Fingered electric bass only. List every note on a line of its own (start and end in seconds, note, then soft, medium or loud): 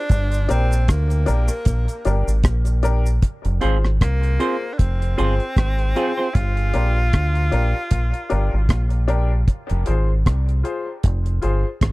0.11 0.46 G1 loud
0.51 0.86 A#1 medium
0.89 1.25 D2 loud
1.29 1.48 A#1 medium
1.67 1.87 A#1 medium
2.06 2.26 G1 medium
2.27 2.43 G#1 medium
2.44 3.19 A#1 medium
3.45 3.61 F1 medium
3.64 3.98 G#1 medium
4.02 4.37 C2 medium
4.80 5.15 F1 medium
5.19 5.39 G1 medium
5.57 5.93 G#1 medium
6.36 6.71 G1 loud
6.75 7.10 A#1 medium
7.14 7.49 D2 medium
7.53 7.72 A#1 medium
7.92 8.12 A#1 medium
8.32 8.51 G1 medium
8.54 8.69 G#1 medium
8.70 9.44 A#1 medium
9.71 9.86 F1 medium
9.88 10.23 G#1 medium
10.27 10.62 C2 medium
11.05 11.40 F1 loud
11.44 11.63 G1 medium
11.82 11.92 G#1 medium